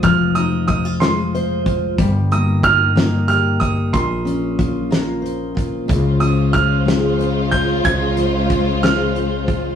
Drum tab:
HH |xxxxxx|xxxxxx|xxxxxx|xxxxxx|
SD |---o--|---o--|---o--|---o--|
BD |o-o--o|o-o--o|o-o--o|o-o--o|

HH |xxxxxx|
SD |---o--|
BD |o-o--o|